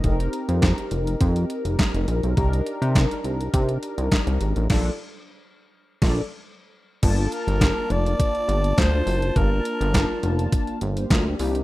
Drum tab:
CC |----------------|----------------|x--------x------|x---------------|
HH |xxxxxxxxxxxxxxxx|xxxxxxxxxxxxxxxx|----------------|x-xxx-xxxxxxx-ox|
CP |----x-------x---|----x-------x---|----------------|----x-------x---|
SD |----o-------o---|----o-------o---|o--------o------|----o-------o---|
BD |o---o---o---o---|o---o---o---o---|o--------o------|o---o---o---o---|

CC |----------------|
HH |x-xxx-xxxxxxx-ox|
CP |----x-------x---|
SD |----o-------o---|
BD |o---o---o---o---|